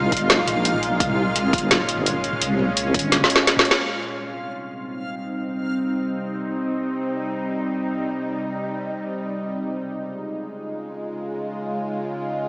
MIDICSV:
0, 0, Header, 1, 5, 480
1, 0, Start_track
1, 0, Tempo, 500000
1, 11987, End_track
2, 0, Start_track
2, 0, Title_t, "Synth texture"
2, 0, Program_c, 0, 99
2, 0, Note_on_c, 0, 65, 92
2, 0, Note_on_c, 0, 77, 89
2, 3681, Note_off_c, 0, 65, 0
2, 3681, Note_off_c, 0, 77, 0
2, 11987, End_track
3, 0, Start_track
3, 0, Title_t, "Synth drone"
3, 0, Program_c, 1, 95
3, 0, Note_on_c, 1, 46, 79
3, 0, Note_on_c, 1, 56, 71
3, 0, Note_on_c, 1, 63, 88
3, 0, Note_on_c, 1, 65, 86
3, 927, Note_off_c, 1, 63, 0
3, 965, Note_on_c, 1, 61, 88
3, 3635, Note_off_c, 1, 46, 0
3, 3635, Note_off_c, 1, 56, 0
3, 3635, Note_off_c, 1, 65, 0
3, 3648, Note_off_c, 1, 61, 0
3, 3674, Note_on_c, 1, 60, 69
3, 3674, Note_on_c, 1, 63, 81
3, 3675, Note_on_c, 1, 48, 74
3, 3675, Note_on_c, 1, 55, 65
3, 9057, Note_off_c, 1, 48, 0
3, 9057, Note_off_c, 1, 55, 0
3, 9057, Note_off_c, 1, 60, 0
3, 9094, Note_on_c, 1, 65, 84
3, 9095, Note_on_c, 1, 49, 69
3, 9095, Note_on_c, 1, 56, 70
3, 11768, Note_off_c, 1, 63, 0
3, 11807, Note_on_c, 1, 61, 81
3, 11987, Note_off_c, 1, 49, 0
3, 11987, Note_off_c, 1, 56, 0
3, 11987, Note_off_c, 1, 61, 0
3, 11987, Note_off_c, 1, 65, 0
3, 11987, End_track
4, 0, Start_track
4, 0, Title_t, "Wobble bass"
4, 0, Program_c, 2, 39
4, 0, Note_on_c, 2, 36, 105
4, 106, Note_off_c, 2, 36, 0
4, 116, Note_on_c, 2, 31, 95
4, 454, Note_on_c, 2, 34, 91
4, 468, Note_off_c, 2, 31, 0
4, 952, Note_off_c, 2, 34, 0
4, 961, Note_on_c, 2, 36, 98
4, 1460, Note_off_c, 2, 36, 0
4, 1471, Note_on_c, 2, 31, 93
4, 2225, Note_off_c, 2, 31, 0
4, 2318, Note_on_c, 2, 36, 101
4, 2816, Note_off_c, 2, 36, 0
4, 2826, Note_on_c, 2, 31, 99
4, 3155, Note_off_c, 2, 31, 0
4, 11987, End_track
5, 0, Start_track
5, 0, Title_t, "Drums"
5, 116, Note_on_c, 9, 36, 58
5, 117, Note_on_c, 9, 42, 46
5, 117, Note_on_c, 9, 45, 51
5, 160, Note_off_c, 9, 42, 0
5, 160, Note_on_c, 9, 42, 61
5, 212, Note_off_c, 9, 36, 0
5, 213, Note_off_c, 9, 45, 0
5, 256, Note_off_c, 9, 42, 0
5, 286, Note_on_c, 9, 38, 114
5, 286, Note_on_c, 9, 42, 74
5, 382, Note_off_c, 9, 38, 0
5, 382, Note_off_c, 9, 42, 0
5, 456, Note_on_c, 9, 42, 64
5, 456, Note_on_c, 9, 45, 80
5, 552, Note_off_c, 9, 42, 0
5, 552, Note_off_c, 9, 45, 0
5, 625, Note_on_c, 9, 42, 76
5, 712, Note_on_c, 9, 45, 53
5, 721, Note_off_c, 9, 42, 0
5, 795, Note_on_c, 9, 42, 35
5, 808, Note_off_c, 9, 45, 0
5, 891, Note_off_c, 9, 42, 0
5, 962, Note_on_c, 9, 36, 114
5, 964, Note_on_c, 9, 42, 77
5, 1051, Note_on_c, 9, 45, 78
5, 1058, Note_off_c, 9, 36, 0
5, 1060, Note_off_c, 9, 42, 0
5, 1147, Note_off_c, 9, 45, 0
5, 1303, Note_on_c, 9, 42, 77
5, 1303, Note_on_c, 9, 45, 54
5, 1399, Note_off_c, 9, 42, 0
5, 1399, Note_off_c, 9, 45, 0
5, 1471, Note_on_c, 9, 36, 97
5, 1474, Note_on_c, 9, 42, 47
5, 1517, Note_off_c, 9, 42, 0
5, 1517, Note_on_c, 9, 42, 62
5, 1567, Note_off_c, 9, 36, 0
5, 1613, Note_off_c, 9, 42, 0
5, 1641, Note_on_c, 9, 38, 115
5, 1641, Note_on_c, 9, 42, 78
5, 1641, Note_on_c, 9, 45, 82
5, 1737, Note_off_c, 9, 38, 0
5, 1737, Note_off_c, 9, 42, 0
5, 1737, Note_off_c, 9, 45, 0
5, 1811, Note_on_c, 9, 42, 66
5, 1898, Note_on_c, 9, 45, 54
5, 1907, Note_off_c, 9, 42, 0
5, 1981, Note_on_c, 9, 42, 77
5, 1994, Note_off_c, 9, 45, 0
5, 2077, Note_off_c, 9, 42, 0
5, 2150, Note_on_c, 9, 42, 36
5, 2237, Note_on_c, 9, 45, 79
5, 2246, Note_off_c, 9, 42, 0
5, 2319, Note_on_c, 9, 42, 80
5, 2333, Note_off_c, 9, 45, 0
5, 2415, Note_off_c, 9, 42, 0
5, 2488, Note_on_c, 9, 45, 58
5, 2584, Note_off_c, 9, 45, 0
5, 2657, Note_on_c, 9, 42, 80
5, 2753, Note_off_c, 9, 42, 0
5, 2826, Note_on_c, 9, 36, 63
5, 2827, Note_on_c, 9, 42, 50
5, 2827, Note_on_c, 9, 45, 81
5, 2871, Note_off_c, 9, 42, 0
5, 2871, Note_on_c, 9, 42, 66
5, 2922, Note_off_c, 9, 36, 0
5, 2923, Note_off_c, 9, 45, 0
5, 2967, Note_off_c, 9, 42, 0
5, 2996, Note_on_c, 9, 38, 67
5, 2996, Note_on_c, 9, 42, 78
5, 3083, Note_on_c, 9, 45, 51
5, 3092, Note_off_c, 9, 38, 0
5, 3092, Note_off_c, 9, 42, 0
5, 3109, Note_on_c, 9, 38, 69
5, 3167, Note_on_c, 9, 42, 67
5, 3179, Note_off_c, 9, 45, 0
5, 3205, Note_off_c, 9, 38, 0
5, 3222, Note_on_c, 9, 38, 87
5, 3263, Note_off_c, 9, 42, 0
5, 3318, Note_off_c, 9, 38, 0
5, 3335, Note_on_c, 9, 38, 89
5, 3335, Note_on_c, 9, 42, 78
5, 3422, Note_on_c, 9, 45, 81
5, 3431, Note_off_c, 9, 38, 0
5, 3431, Note_off_c, 9, 42, 0
5, 3447, Note_on_c, 9, 38, 98
5, 3505, Note_on_c, 9, 42, 35
5, 3518, Note_off_c, 9, 45, 0
5, 3543, Note_off_c, 9, 38, 0
5, 3562, Note_on_c, 9, 38, 100
5, 3601, Note_off_c, 9, 42, 0
5, 3658, Note_off_c, 9, 38, 0
5, 11987, End_track
0, 0, End_of_file